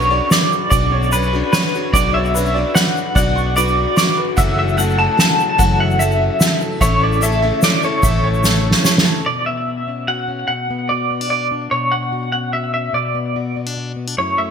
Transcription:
Already playing: fingered electric bass B1, twelve-string acoustic guitar F#3 C#4 D4, upright piano D4 B4 C#5, clean electric guitar C#5
0.01 shaker
0.10 twelve-string acoustic guitar C#4 D4 F#4, upright piano D5
0.31 twelve-string acoustic guitar F#3 D4 F#4, clean electric guitar D5, snare, ride, shaker
0.52 shaker
0.70 fingered electric bass B1, twelve-string acoustic guitar B2 F#3 D4 F#4, clean electric guitar D5, upright piano D5, kick, ride, shaker
0.92 upright piano C#5
1.03 shaker
1.12 twelve-string acoustic guitar F#3 C#4 D4 F#4, upright piano B4, clean electric guitar B4, ride, shaker
1.23 shaker
1.33 twelve-string acoustic guitar C#4 D4 F#4
1.53 twelve-string acoustic guitar F#3 C#4 D4 F#4, clean electric guitar B4, upright piano C#5, snare, ride, shaker
1.73 twelve-string acoustic guitar C#4 D4 F#4, upright piano B4, ride, shaker
1.93 fingered electric bass B1, twelve-string acoustic guitar B2 F#3 D4 F#4, clean electric guitar D5, upright piano D5, kick, ride, shaker
2.14 upright piano C#5, clean electric guitar E5
2.25 shaker
2.34 twelve-string acoustic guitar F#3 C#4 D4 F#4, upright piano B4, ride, shaker
2.46 shaker
2.54 twelve-string acoustic guitar C#4 D4 F#4, upright piano D5
2.75 twelve-string acoustic guitar F#3 D4 F#4, clean electric guitar F#5, snare, ride, shaker
2.97 shaker
3.15 fingered electric bass B1, twelve-string acoustic guitar B2 F#3 D4 F#4, upright piano D5, clean electric guitar F#5, kick, ride, shaker
3.36 upright piano C#6, shaker
3.56 twelve-string acoustic guitar F#3 D4 F#4, upright piano B4, clean electric guitar D5, ride, shaker
3.67 shaker
3.96 twelve-string acoustic guitar F#3 D4 F#4, clean electric guitar D5, upright piano C#6, snare, ride, shaker
4.17 upright piano B4, ride
4.37 fingered electric bass F#1, twelve-string acoustic guitar F#2 E3 F#3 A3 C#4 F#4, tonewheel organ C#3 F#3 A3 E4, clean electric guitar E5, upright piano F#5, kick, ride, shaker
4.57 upright piano E5, clean electric guitar E5
4.69 shaker
4.77 twelve-string acoustic guitar F#3 A3 C#4 F#4, upright piano A4, clean electric guitar F#5, ride, shaker
4.90 shaker
4.97 twelve-string acoustic guitar F#3 A3 C#4 F#4, upright piano F#5, clean electric guitar A5
5.18 twelve-string acoustic guitar F#3 A3 C#4 F#4, clean electric guitar A5, snare, ride, shaker
5.40 shaker
5.49 clean electric guitar A5
5.58 fingered electric bass F#1, twelve-string acoustic guitar F#2 E3 F#3 A3 C#4 F#4, upright piano F#5, kick, ride, shaker
5.79 upright piano E5, clean electric guitar F#5
5.91 shaker
5.99 twelve-string acoustic guitar F#3 A3 C#4 F#4, upright piano A4, clean electric guitar E5, ride, shaker
6.11 shaker
6.40 twelve-string acoustic guitar F#3 A3 C#4 F#4, upright piano E5, snare, ride, shaker
6.61 upright piano A4, ride, shaker
6.80 fingered electric bass A1, twelve-string acoustic guitar A2 E3 A3 C#4 E4 A4, tonewheel organ E3 A3, clean electric guitar C#5, upright piano E5, kick, ride, shaker
7.01 upright piano C#5, clean electric guitar D5
7.12 shaker
7.21 twelve-string acoustic guitar A3 C#4 E4 A4, upright piano A4, clean electric guitar E5, ride, shaker
7.32 shaker
7.42 twelve-string acoustic guitar A3 C#4 E4 A4, upright piano E5
7.62 twelve-string acoustic guitar A3 C#4 E4 A4, clean electric guitar D5, snare, ride, shaker
7.82 twelve-string acoustic guitar A3 C#4 E4 A4, clean electric guitar C#5, shaker
8.03 fingered electric bass A1, twelve-string acoustic guitar A2 E3 A3 C#4 E4 A4, upright piano E5, kick, ride, shaker
8.24 upright piano C#5
8.34 shaker
8.44 twelve-string acoustic guitar A3 C#4 E4 A4, upright piano A4, snare, shaker
8.55 shaker
8.71 snare
8.84 twelve-string acoustic guitar A3 C#4 E4 A4, upright piano C#5, snare, shaker
8.98 snare
9.05 upright piano A4
9.26 steel-string acoustic guitar B2, clean electric guitar D5
9.39 clean electric guitar D5
9.46 steel-string acoustic guitar B3, clean electric guitar E5
9.68 steel-string acoustic guitar F#4
9.87 steel-string acoustic guitar C#4
10.08 steel-string acoustic guitar F#4, clean electric guitar F#5
10.28 steel-string acoustic guitar C#4
10.48 steel-string acoustic guitar B2, clean electric guitar F#5
10.70 steel-string acoustic guitar B3
10.89 steel-string acoustic guitar F#4, clean electric guitar D5
11.11 steel-string acoustic guitar B3
11.21 steel-string acoustic guitar D4
11.30 steel-string acoustic guitar F#4, clean electric guitar D5
11.51 steel-string acoustic guitar D4
11.71 steel-string acoustic guitar B2, clean electric guitar C#5
11.92 steel-string acoustic guitar B3, clean electric guitar F#5
12.12 steel-string acoustic guitar F#4
12.32 steel-string acoustic guitar C#4, clean electric guitar F#5
12.53 steel-string acoustic guitar F#4, clean electric guitar E5
12.74 steel-string acoustic guitar C#4, clean electric guitar E5
12.93 steel-string acoustic guitar B2, clean electric guitar D5
13.15 steel-string acoustic guitar B3
13.36 steel-string acoustic guitar F#4
13.56 steel-string acoustic guitar B3
13.66 steel-string acoustic guitar D4
13.77 steel-string acoustic guitar F#4
13.96 steel-string acoustic guitar B3
14.07 steel-string acoustic guitar D4
14.17 steel-string acoustic guitar F#2 F#3 A3 C#4 E4, clean electric guitar C#5
14.38 steel-string acoustic guitar A3, clean electric guitar E5

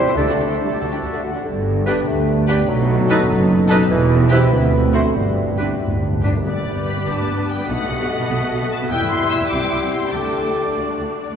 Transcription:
Already playing: bassoon C4, clarinet G4, oboe C5, flute E5
0.06 cello section C2, viola section E4, violin section G4 C5
0.16 double bass section D2, cello section D2, bassoon A3, viola section D4, clarinet G4, violin section G4 A4, oboe A4, flute D5
0.27 cello section D2, viola section D4, violin section F#4 G4
0.37 double bass section D2, cello section D2, viola section D4, violin section G4 A4
0.47 cello section D2, viola section D4, violin section G4 A4
0.60 trombone section D3 G3, french horn section D4 G4
0.69 cello section D2, viola section D4, violin section G4 A4
0.79 double bass section D2, cello section D2, viola section D4, violin section F#4 A4, clarinet F#4, oboe A4, flute D5
0.90 cello section D2, viola section D4, violin section E4 G4
1.01 double bass section D2, cello section D2, viola section D4, violin section A4, flute E5
1.05 violin section F#4
1.11 cello section D2, viola section D4, violin section F#4 A4
1.22 trombone section D3 A3, french horn section D4 F#4, flute F#5
1.33 cello section D2, viola section D4, violin section F#4 A4
1.43 double bass section G1, cello section G2, bassoon D3, trombone section D3 B3, french horn section D4 G4
1.86 bassoon B3, viola section D4, clarinet G4, violin section G4 B4, oboe B4, flute D5
2.07 double bass section D2, cello section D2, bassoon A3
2.47 bassoon G3, viola section D4, violin section G4 B4, clarinet G4, oboe B4, flute D5
2.68 double bass section B1, trombone section B2, cello section B2, bassoon F#3, french horn section D#4 A4
3.09 viola section D#4, violin section A4 B4, clarinet A4, oboe B4, flute D#5
3.29 double bass section F#1, cello section F#2
3.69 viola section D#4, violin section A4 B4, clarinet A4, oboe B4, flute D#5
3.89 double bass section E1, cello section E2, bassoon E3, trombone section B3, french horn section E4 G4
4.29 bassoon C4, viola section E4, violin section G4 B4, clarinet G4, oboe B4, flute E5
4.51 cello section D2, double bass section D2, trombone section D3 C4, bassoon B3, french horn section F#4
4.93 bassoon A3, viola section E4, violin section F#4 C5, clarinet F#4, oboe C5, flute E5
5.15 double bass section G1, timpani G2, cello section G2, bassoon G3, trombone section B3, french horn section G4
5.23 timpani G2
5.30 timpani G2
5.39 timpani G2
5.46 timpani G2
5.55 timpani G2, viola section D4, violin section G4 B4, oboe B4
5.59 timpani G2, clarinet G4, flute D5
5.70 timpani G2
5.78 cello section D2, double bass section D2, timpani G2, french horn section E4
5.87 timpani G2
5.94 timpani G2
6.01 timpani G2, french horn section D4
6.10 timpani G2
6.18 timpani G2, violin section G4, french horn section G4
6.23 timpani G2, viola section D4, clarinet G4, oboe B4, violin section B4, flute D5
6.33 timpani G2
6.44 double bass section G1, cello section G2, bassoon G3, viola section B3 G4, clarinet B3, violin section B4 D5, oboe B4, flute D6
6.55 cello section G2, viola section A3
6.65 double bass section G1, cello section G2, viola section B3
6.75 cello section G2, viola section B3
6.86 violin section B5
6.96 cello section G2, viola section B3
7.06 double bass section G1, cello section G2, viola section B3, french horn section D4, violin section A5
7.17 cello section G2, viola section A3
7.27 double bass section G1, cello section G2, viola section B3
7.37 cello section G2, viola section B3
7.48 violin section G5
7.58 cello section G2, viola section B3
7.67 double bass section B1, cello section B2, bassoon A3, viola section B3 F#4, french horn section D#4, violin section A4 D#5 F#5, flute D#6
7.79 cello section B2, viola section A3
7.88 double bass section B1, cello section B2, viola section B3, french horn section G4
8.00 cello section B2, viola section B3
8.09 french horn section F#4
8.20 cello section B2, viola section B3
8.30 double bass section B1, cello section B2, viola section B3
8.40 cello section B2, viola section A3
8.51 double bass section B1, cello section B2, viola section B3
8.61 cello section B2, viola section B3
8.70 violin section A5
8.81 cello section B2, viola section B3
8.90 double bass section E1, cello section E2, bassoon G3, viola section B3 E4, french horn section E4, clarinet E4, violin section G4 E5 G5, oboe B4, flute E6
9.01 cello section E2, viola section A3
9.11 double bass section E1, cello section E2, viola section B3, violin section C6
9.21 cello section E2, viola section B3
9.31 violin section E6
9.41 cello section E2, viola section B3
9.50 cello section C2, double bass section C2, viola section C4, clarinet G4, oboe C5, violin section G5 D6
9.62 cello section C2, viola section B3
9.72 cello section C2, double bass section C2, viola section C4
9.82 cello section C2, viola section C4
9.93 violin section C6
10.03 cello section C2, viola section C4
10.12 cello section D2, double bass section D2, timpani D3, viola section A3 D4, bassoon A3, french horn section A4, oboe D5, violin section A5, flute D6
10.24 cello section D2, viola section G3
10.34 cello section D2, double bass section D2, viola section A3
10.44 cello section D2, viola section A3
10.66 cello section D2, viola section A3
10.76 cello section D2, double bass section D2, viola section A3, violin section F#4 D5, clarinet F#4
10.87 cello section D2, viola section G3
10.98 cello section D2, double bass section D2, viola section A3
11.08 cello section D2, viola section A3
11.30 cello section D2, viola section A3

